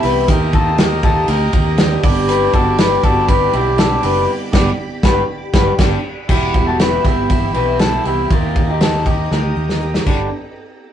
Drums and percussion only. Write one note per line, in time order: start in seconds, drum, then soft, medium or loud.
0.03 open hi-hat medium
0.03 ride medium
0.28 kick loud
0.28 hi-hat pedal medium
0.28 ride medium
0.53 kick loud
0.53 ride medium
0.78 snare loud
0.78 ride medium
1.03 kick loud
1.03 ride medium
1.28 ride medium
1.53 kick medium
1.53 ride medium
1.78 snare loud
1.78 ride medium
2.03 kick loud
2.03 open hi-hat medium
2.03 ride medium
2.29 hi-hat pedal medium
2.29 ride medium
2.53 kick medium
2.53 ride medium
2.78 snare loud
2.78 ride medium
3.04 kick loud
3.04 ride medium
3.29 kick loud
3.29 ride medium
3.53 ride medium
3.78 snare loud
3.78 ride medium
4.03 open hi-hat medium
4.03 ride medium
4.53 kick loud
4.53 snare loud
4.53 crash medium
5.03 kick loud
5.03 snare loud
5.54 kick loud
5.54 snare loud
5.78 kick loud
5.78 snare loud
5.78 crash medium
6.29 kick loud
6.29 crash loud
6.54 kick medium
6.54 ride medium
6.79 snare loud
6.79 ride medium
7.05 kick loud
7.05 snare soft
7.05 ride medium
7.30 kick medium
7.30 ride medium
7.54 ride medium
7.79 snare loud
7.79 ride medium
8.05 ride medium
8.31 kick loud
8.31 ride medium
8.56 kick loud
8.56 ride medium
8.81 snare loud
8.81 ride medium
9.06 kick medium
9.06 ride medium
9.31 snare medium
9.69 snare medium
9.94 snare medium
10.06 kick loud
10.06 crash medium